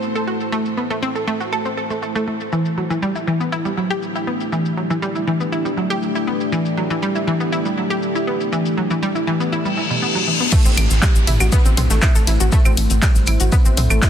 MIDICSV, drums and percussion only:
0, 0, Header, 1, 2, 480
1, 0, Start_track
1, 0, Key_signature, 0, "minor"
1, 0, Tempo, 500000
1, 504, Time_signature, 4, 2, 24, 8
1, 13534, End_track
2, 0, Start_track
2, 0, Title_t, "Drums"
2, 23, Note_on_c, 9, 82, 53
2, 119, Note_off_c, 9, 82, 0
2, 148, Note_on_c, 9, 82, 53
2, 244, Note_off_c, 9, 82, 0
2, 388, Note_on_c, 9, 82, 51
2, 484, Note_off_c, 9, 82, 0
2, 503, Note_on_c, 9, 82, 48
2, 599, Note_off_c, 9, 82, 0
2, 628, Note_on_c, 9, 82, 53
2, 724, Note_off_c, 9, 82, 0
2, 868, Note_on_c, 9, 82, 48
2, 964, Note_off_c, 9, 82, 0
2, 983, Note_on_c, 9, 82, 48
2, 1079, Note_off_c, 9, 82, 0
2, 1108, Note_on_c, 9, 82, 50
2, 1204, Note_off_c, 9, 82, 0
2, 1348, Note_on_c, 9, 82, 52
2, 1444, Note_off_c, 9, 82, 0
2, 1463, Note_on_c, 9, 82, 50
2, 1559, Note_off_c, 9, 82, 0
2, 1588, Note_on_c, 9, 82, 47
2, 1684, Note_off_c, 9, 82, 0
2, 1828, Note_on_c, 9, 82, 50
2, 1924, Note_off_c, 9, 82, 0
2, 1943, Note_on_c, 9, 82, 50
2, 2039, Note_off_c, 9, 82, 0
2, 2068, Note_on_c, 9, 82, 48
2, 2164, Note_off_c, 9, 82, 0
2, 2308, Note_on_c, 9, 82, 47
2, 2404, Note_off_c, 9, 82, 0
2, 2423, Note_on_c, 9, 82, 48
2, 2519, Note_off_c, 9, 82, 0
2, 2548, Note_on_c, 9, 82, 53
2, 2644, Note_off_c, 9, 82, 0
2, 2788, Note_on_c, 9, 82, 50
2, 2884, Note_off_c, 9, 82, 0
2, 2904, Note_on_c, 9, 82, 47
2, 3000, Note_off_c, 9, 82, 0
2, 3028, Note_on_c, 9, 82, 50
2, 3124, Note_off_c, 9, 82, 0
2, 3269, Note_on_c, 9, 82, 51
2, 3365, Note_off_c, 9, 82, 0
2, 3384, Note_on_c, 9, 82, 50
2, 3480, Note_off_c, 9, 82, 0
2, 3508, Note_on_c, 9, 82, 49
2, 3604, Note_off_c, 9, 82, 0
2, 3749, Note_on_c, 9, 82, 49
2, 3845, Note_off_c, 9, 82, 0
2, 3864, Note_on_c, 9, 82, 50
2, 3960, Note_off_c, 9, 82, 0
2, 3989, Note_on_c, 9, 82, 50
2, 4085, Note_off_c, 9, 82, 0
2, 4228, Note_on_c, 9, 82, 49
2, 4324, Note_off_c, 9, 82, 0
2, 4344, Note_on_c, 9, 82, 52
2, 4440, Note_off_c, 9, 82, 0
2, 4469, Note_on_c, 9, 82, 54
2, 4565, Note_off_c, 9, 82, 0
2, 4709, Note_on_c, 9, 82, 52
2, 4805, Note_off_c, 9, 82, 0
2, 4824, Note_on_c, 9, 82, 48
2, 4920, Note_off_c, 9, 82, 0
2, 4948, Note_on_c, 9, 82, 53
2, 5044, Note_off_c, 9, 82, 0
2, 5188, Note_on_c, 9, 82, 52
2, 5284, Note_off_c, 9, 82, 0
2, 5304, Note_on_c, 9, 82, 53
2, 5400, Note_off_c, 9, 82, 0
2, 5428, Note_on_c, 9, 82, 49
2, 5524, Note_off_c, 9, 82, 0
2, 5668, Note_on_c, 9, 82, 51
2, 5764, Note_off_c, 9, 82, 0
2, 5784, Note_on_c, 9, 82, 53
2, 5880, Note_off_c, 9, 82, 0
2, 5908, Note_on_c, 9, 82, 52
2, 6004, Note_off_c, 9, 82, 0
2, 6149, Note_on_c, 9, 82, 52
2, 6245, Note_off_c, 9, 82, 0
2, 6264, Note_on_c, 9, 82, 52
2, 6360, Note_off_c, 9, 82, 0
2, 6388, Note_on_c, 9, 82, 54
2, 6484, Note_off_c, 9, 82, 0
2, 6629, Note_on_c, 9, 82, 53
2, 6725, Note_off_c, 9, 82, 0
2, 6743, Note_on_c, 9, 82, 52
2, 6839, Note_off_c, 9, 82, 0
2, 6868, Note_on_c, 9, 82, 53
2, 6964, Note_off_c, 9, 82, 0
2, 7109, Note_on_c, 9, 82, 55
2, 7205, Note_off_c, 9, 82, 0
2, 7224, Note_on_c, 9, 82, 56
2, 7320, Note_off_c, 9, 82, 0
2, 7349, Note_on_c, 9, 82, 53
2, 7445, Note_off_c, 9, 82, 0
2, 7589, Note_on_c, 9, 82, 54
2, 7685, Note_off_c, 9, 82, 0
2, 7704, Note_on_c, 9, 82, 53
2, 7800, Note_off_c, 9, 82, 0
2, 7829, Note_on_c, 9, 82, 54
2, 7925, Note_off_c, 9, 82, 0
2, 8069, Note_on_c, 9, 82, 52
2, 8165, Note_off_c, 9, 82, 0
2, 8184, Note_on_c, 9, 82, 56
2, 8280, Note_off_c, 9, 82, 0
2, 8309, Note_on_c, 9, 82, 56
2, 8405, Note_off_c, 9, 82, 0
2, 8549, Note_on_c, 9, 82, 55
2, 8645, Note_off_c, 9, 82, 0
2, 8664, Note_on_c, 9, 82, 53
2, 8760, Note_off_c, 9, 82, 0
2, 8788, Note_on_c, 9, 82, 55
2, 8884, Note_off_c, 9, 82, 0
2, 9029, Note_on_c, 9, 82, 58
2, 9125, Note_off_c, 9, 82, 0
2, 9144, Note_on_c, 9, 82, 55
2, 9240, Note_off_c, 9, 82, 0
2, 9269, Note_on_c, 9, 82, 52
2, 9365, Note_off_c, 9, 82, 0
2, 9509, Note_on_c, 9, 82, 54
2, 9605, Note_off_c, 9, 82, 0
2, 9624, Note_on_c, 9, 82, 57
2, 9720, Note_off_c, 9, 82, 0
2, 9749, Note_on_c, 9, 82, 54
2, 9845, Note_off_c, 9, 82, 0
2, 9989, Note_on_c, 9, 82, 54
2, 10085, Note_off_c, 9, 82, 0
2, 10100, Note_on_c, 9, 82, 92
2, 10103, Note_on_c, 9, 36, 124
2, 10104, Note_off_c, 9, 82, 0
2, 10104, Note_on_c, 9, 49, 105
2, 10104, Note_on_c, 9, 82, 57
2, 10199, Note_off_c, 9, 36, 0
2, 10200, Note_off_c, 9, 49, 0
2, 10200, Note_off_c, 9, 82, 0
2, 10229, Note_on_c, 9, 82, 61
2, 10325, Note_off_c, 9, 82, 0
2, 10344, Note_on_c, 9, 46, 107
2, 10344, Note_on_c, 9, 75, 51
2, 10350, Note_on_c, 9, 82, 64
2, 10440, Note_off_c, 9, 46, 0
2, 10440, Note_off_c, 9, 75, 0
2, 10446, Note_off_c, 9, 82, 0
2, 10469, Note_on_c, 9, 82, 60
2, 10477, Note_on_c, 9, 38, 50
2, 10565, Note_off_c, 9, 82, 0
2, 10573, Note_off_c, 9, 38, 0
2, 10583, Note_on_c, 9, 36, 122
2, 10584, Note_on_c, 9, 39, 107
2, 10584, Note_on_c, 9, 82, 59
2, 10585, Note_off_c, 9, 82, 0
2, 10585, Note_on_c, 9, 82, 85
2, 10591, Note_on_c, 9, 38, 127
2, 10679, Note_off_c, 9, 36, 0
2, 10680, Note_off_c, 9, 39, 0
2, 10681, Note_off_c, 9, 82, 0
2, 10687, Note_off_c, 9, 38, 0
2, 10708, Note_on_c, 9, 82, 57
2, 10804, Note_off_c, 9, 82, 0
2, 10823, Note_on_c, 9, 46, 113
2, 10823, Note_on_c, 9, 47, 86
2, 10829, Note_on_c, 9, 82, 76
2, 10919, Note_off_c, 9, 46, 0
2, 10919, Note_off_c, 9, 47, 0
2, 10925, Note_off_c, 9, 82, 0
2, 10948, Note_on_c, 9, 75, 54
2, 10948, Note_on_c, 9, 82, 61
2, 10952, Note_on_c, 9, 38, 46
2, 11044, Note_off_c, 9, 75, 0
2, 11044, Note_off_c, 9, 82, 0
2, 11048, Note_off_c, 9, 38, 0
2, 11061, Note_on_c, 9, 82, 97
2, 11063, Note_off_c, 9, 82, 0
2, 11063, Note_on_c, 9, 82, 59
2, 11064, Note_on_c, 9, 36, 127
2, 11159, Note_off_c, 9, 82, 0
2, 11160, Note_off_c, 9, 36, 0
2, 11188, Note_on_c, 9, 82, 58
2, 11284, Note_off_c, 9, 82, 0
2, 11303, Note_on_c, 9, 46, 105
2, 11303, Note_on_c, 9, 47, 92
2, 11308, Note_on_c, 9, 82, 71
2, 11399, Note_off_c, 9, 46, 0
2, 11399, Note_off_c, 9, 47, 0
2, 11404, Note_off_c, 9, 82, 0
2, 11424, Note_on_c, 9, 38, 56
2, 11428, Note_on_c, 9, 82, 60
2, 11520, Note_off_c, 9, 38, 0
2, 11524, Note_off_c, 9, 82, 0
2, 11535, Note_on_c, 9, 82, 92
2, 11543, Note_off_c, 9, 82, 0
2, 11543, Note_on_c, 9, 36, 123
2, 11543, Note_on_c, 9, 39, 110
2, 11543, Note_on_c, 9, 75, 51
2, 11543, Note_on_c, 9, 82, 59
2, 11544, Note_on_c, 9, 38, 124
2, 11639, Note_off_c, 9, 36, 0
2, 11639, Note_off_c, 9, 39, 0
2, 11639, Note_off_c, 9, 75, 0
2, 11639, Note_off_c, 9, 82, 0
2, 11640, Note_off_c, 9, 38, 0
2, 11667, Note_on_c, 9, 38, 46
2, 11668, Note_on_c, 9, 82, 58
2, 11763, Note_off_c, 9, 38, 0
2, 11764, Note_off_c, 9, 82, 0
2, 11781, Note_on_c, 9, 38, 50
2, 11782, Note_on_c, 9, 46, 106
2, 11788, Note_on_c, 9, 82, 68
2, 11877, Note_off_c, 9, 38, 0
2, 11878, Note_off_c, 9, 46, 0
2, 11884, Note_off_c, 9, 82, 0
2, 11908, Note_on_c, 9, 82, 60
2, 12004, Note_off_c, 9, 82, 0
2, 12018, Note_on_c, 9, 82, 87
2, 12023, Note_off_c, 9, 82, 0
2, 12023, Note_on_c, 9, 82, 55
2, 12024, Note_on_c, 9, 36, 125
2, 12119, Note_off_c, 9, 82, 0
2, 12120, Note_off_c, 9, 36, 0
2, 12148, Note_on_c, 9, 75, 51
2, 12148, Note_on_c, 9, 82, 61
2, 12244, Note_off_c, 9, 75, 0
2, 12244, Note_off_c, 9, 82, 0
2, 12262, Note_on_c, 9, 46, 117
2, 12262, Note_on_c, 9, 82, 63
2, 12358, Note_off_c, 9, 46, 0
2, 12358, Note_off_c, 9, 82, 0
2, 12383, Note_on_c, 9, 42, 42
2, 12388, Note_on_c, 9, 82, 57
2, 12479, Note_off_c, 9, 42, 0
2, 12484, Note_off_c, 9, 82, 0
2, 12502, Note_on_c, 9, 38, 127
2, 12503, Note_on_c, 9, 36, 124
2, 12503, Note_on_c, 9, 39, 104
2, 12503, Note_on_c, 9, 82, 56
2, 12504, Note_off_c, 9, 82, 0
2, 12504, Note_on_c, 9, 82, 88
2, 12598, Note_off_c, 9, 38, 0
2, 12599, Note_off_c, 9, 36, 0
2, 12599, Note_off_c, 9, 39, 0
2, 12600, Note_off_c, 9, 82, 0
2, 12623, Note_on_c, 9, 38, 49
2, 12628, Note_on_c, 9, 82, 57
2, 12719, Note_off_c, 9, 38, 0
2, 12724, Note_off_c, 9, 82, 0
2, 12733, Note_on_c, 9, 82, 80
2, 12744, Note_on_c, 9, 46, 113
2, 12744, Note_on_c, 9, 75, 52
2, 12829, Note_off_c, 9, 82, 0
2, 12840, Note_off_c, 9, 46, 0
2, 12840, Note_off_c, 9, 75, 0
2, 12862, Note_on_c, 9, 42, 44
2, 12868, Note_on_c, 9, 82, 59
2, 12958, Note_off_c, 9, 42, 0
2, 12964, Note_off_c, 9, 82, 0
2, 12979, Note_on_c, 9, 82, 83
2, 12983, Note_off_c, 9, 82, 0
2, 12983, Note_on_c, 9, 36, 127
2, 12983, Note_on_c, 9, 82, 59
2, 13079, Note_off_c, 9, 36, 0
2, 13079, Note_off_c, 9, 82, 0
2, 13108, Note_on_c, 9, 82, 53
2, 13204, Note_off_c, 9, 82, 0
2, 13222, Note_on_c, 9, 82, 70
2, 13223, Note_on_c, 9, 46, 108
2, 13223, Note_on_c, 9, 47, 91
2, 13318, Note_off_c, 9, 82, 0
2, 13319, Note_off_c, 9, 46, 0
2, 13319, Note_off_c, 9, 47, 0
2, 13348, Note_on_c, 9, 75, 53
2, 13348, Note_on_c, 9, 82, 58
2, 13444, Note_off_c, 9, 75, 0
2, 13444, Note_off_c, 9, 82, 0
2, 13461, Note_on_c, 9, 82, 85
2, 13463, Note_off_c, 9, 82, 0
2, 13463, Note_on_c, 9, 36, 127
2, 13463, Note_on_c, 9, 39, 112
2, 13463, Note_on_c, 9, 82, 61
2, 13464, Note_on_c, 9, 38, 117
2, 13534, Note_off_c, 9, 36, 0
2, 13534, Note_off_c, 9, 38, 0
2, 13534, Note_off_c, 9, 39, 0
2, 13534, Note_off_c, 9, 82, 0
2, 13534, End_track
0, 0, End_of_file